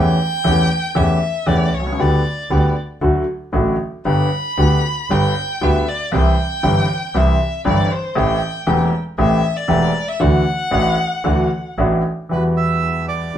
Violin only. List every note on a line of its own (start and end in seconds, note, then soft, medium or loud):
0.00 0.98 G5 medium
0.96 1.50 E5 medium
1.48 1.76 D5 medium
1.75 2.02 C#5 medium
2.00 2.76 D5 medium
4.06 5.13 B5 medium
5.11 5.65 G5 medium
5.63 5.90 E5 medium
5.89 6.13 D5 medium
6.14 7.19 G5 medium
7.17 7.66 E5 medium
7.67 7.93 D5 medium
7.92 8.19 C5 medium
8.17 8.93 G5 medium
9.19 9.59 E5 medium
9.57 10.10 D5 medium
10.09 10.22 E5 medium
10.21 11.78 F#5 medium